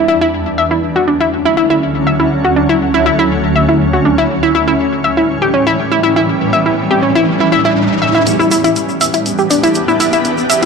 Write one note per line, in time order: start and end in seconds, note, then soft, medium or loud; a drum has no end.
0.00 0.29 E2 medium
0.00 0.29 E3 medium
0.00 0.29 G3 medium
0.00 0.29 D4 medium
0.08 0.17 E4 loud
0.21 0.26 E4 loud
0.33 4.26 D2 medium
0.33 4.26 D3 medium
0.33 4.26 F#3 medium
0.33 8.23 C#4 medium
0.58 0.67 E5 medium
0.71 0.79 E4 medium
0.96 1.04 F#4 medium
1.08 1.16 D4 medium
1.21 1.25 E4 loud
1.45 1.53 E4 loud
1.57 1.66 E4 medium
1.70 1.75 E4 loud
2.07 2.15 E5 medium
2.20 2.28 E4 medium
2.44 2.52 F#4 medium
2.56 2.65 D4 medium
2.69 2.74 E4 medium
2.94 3.02 E4 loud
3.06 3.15 E4 medium
3.19 3.24 E4 loud
3.56 3.64 E5 medium
3.69 3.76 E4 medium
3.93 4.01 F#4 medium
4.05 4.14 D4 medium
4.18 4.23 E4 loud
4.30 8.23 A2 medium
4.30 8.23 E3 medium
4.30 8.23 G3 medium
4.30 riser medium
4.43 4.51 E4 loud
4.55 4.63 E4 medium
4.68 4.72 E4 medium
5.04 5.13 E5 medium
5.17 5.25 E4 medium
5.42 5.50 G4 medium
5.54 5.63 C#4 medium
5.67 5.72 E4 loud
5.92 6.00 E4 medium
6.03 6.12 E4 medium
6.16 6.21 E4 loud
6.53 6.62 E5 medium
6.66 6.74 E4 medium
6.91 6.99 G4 medium
7.03 7.11 C#4 medium
7.15 7.20 E4 loud
7.40 7.48 E4 medium
7.52 7.61 E4 loud
7.65 7.70 E4 medium
8.02 8.11 E5 medium
8.15 8.23 E4 medium
8.26 8.44 E2 medium
8.26 10.65 E3 medium
8.26 10.65 B3 medium
8.26 10.65 D4 medium
8.26 10.65 G4 medium
8.26 closed hi-hat soft
8.26 riser medium
8.26 shaker medium
8.39 8.47 E4 medium
8.39 shaker soft
8.51 8.69 E2 medium
8.51 8.60 E4 loud
8.51 open hi-hat loud
8.51 shaker medium
8.64 8.69 E4 loud
8.64 closed hi-hat medium
8.64 shaker soft
8.76 8.93 E1 medium
8.76 closed hi-hat medium
8.76 shaker soft
8.89 shaker soft
9.01 9.10 E2 loud
9.01 9.10 E5 medium
9.01 open hi-hat medium
9.01 shaker medium
9.14 9.22 E4 medium
9.14 closed hi-hat medium
9.14 shaker soft
9.26 9.35 E2 medium
9.26 closed hi-hat medium
9.26 shaker soft
9.38 9.47 G4 medium
9.38 shaker soft
9.50 9.68 E2 medium
9.50 9.59 D4 medium
9.50 open hi-hat loud
9.50 shaker medium
9.63 9.68 E4 loud
9.63 closed hi-hat medium
9.63 shaker soft
9.74 9.93 E2 medium
9.74 closed hi-hat medium
9.74 shaker medium
9.88 9.96 E4 medium
9.88 shaker soft
10.00 10.17 E2 loud
10.00 10.09 E4 medium
10.00 open hi-hat medium
10.00 shaker medium
10.12 10.18 E4 loud
10.12 closed hi-hat medium
10.12 shaker soft
10.25 10.42 E2 loud
10.25 closed hi-hat medium
10.25 shaker soft
10.38 shaker soft
10.50 10.65 E2 medium
10.50 10.58 E5 medium
10.50 open hi-hat loud
10.50 shaker loud